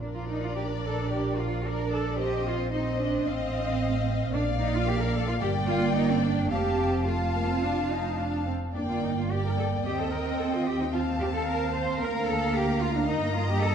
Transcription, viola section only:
0.01 1.61 D4 medium
1.65 2.18 D4 medium
2.20 2.73 C4 medium
2.74 3.25 C4 medium
3.26 4.31 C4 medium
4.33 5.40 A#3 medium
5.41 6.48 A#3 medium
6.51 7.06 C4 medium
7.07 7.15 A3 medium
7.34 7.48 A#3 medium
7.50 7.63 C4 medium
7.64 7.91 D4 medium
7.91 8.19 D#4 medium
8.18 8.47 D4 medium
8.46 8.54 C4 medium
8.75 9.27 A#3 medium
9.31 9.85 A#3 medium
9.86 10.92 C4 medium
10.93 11.99 C4 medium
12.01 13.07 A#3 medium
13.08 13.75 A#3 medium

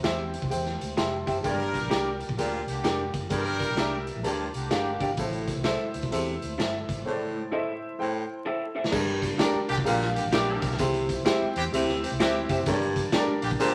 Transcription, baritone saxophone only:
1.45 1.80 G2 medium
2.38 2.62 A#2 medium
3.31 3.67 G2 medium
4.24 4.48 G2 medium
5.18 5.54 A2 medium
6.12 6.36 C3 medium
7.07 7.42 A2 medium
8.01 8.24 A2 medium
8.93 9.29 G2 medium
9.86 10.10 A#2 medium
10.80 11.16 C3 medium
11.74 11.97 C3 medium
12.67 13.02 G2 medium
13.60 13.74 A#2 medium

